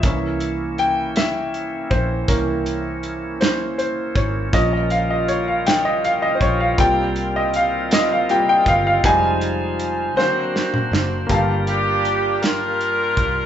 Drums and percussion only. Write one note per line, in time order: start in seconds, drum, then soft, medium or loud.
0.03 kick loud
0.03 closed hi-hat medium
0.40 closed hi-hat soft
0.78 closed hi-hat soft
1.16 snare medium
1.16 closed hi-hat medium
1.54 closed hi-hat soft
1.91 kick medium
1.91 closed hi-hat soft
2.28 kick loud
2.28 closed hi-hat medium
2.66 closed hi-hat medium
3.03 closed hi-hat soft
3.41 snare loud
3.41 closed hi-hat medium
3.79 closed hi-hat soft
4.16 kick medium
4.16 closed hi-hat soft
4.53 kick loud
4.53 closed hi-hat medium
4.90 closed hi-hat medium
5.28 closed hi-hat medium
5.67 snare medium
5.67 closed hi-hat medium
6.04 closed hi-hat soft
6.41 kick medium
6.41 closed hi-hat soft
6.78 kick loud
6.78 closed hi-hat medium
7.16 closed hi-hat soft
7.54 closed hi-hat soft
7.91 snare loud
7.91 closed hi-hat medium
8.29 closed hi-hat soft
8.66 kick medium
8.66 closed hi-hat soft
9.04 kick loud
9.04 closed hi-hat medium
9.41 closed hi-hat soft
9.79 closed hi-hat medium
10.19 snare medium
10.56 snare medium
10.74 mid tom medium
10.93 snare medium
11.29 kick medium
11.29 closed hi-hat medium
11.67 closed hi-hat soft
12.05 closed hi-hat soft
12.43 snare medium
12.43 closed hi-hat medium
12.81 closed hi-hat soft
13.17 kick medium
13.17 closed hi-hat soft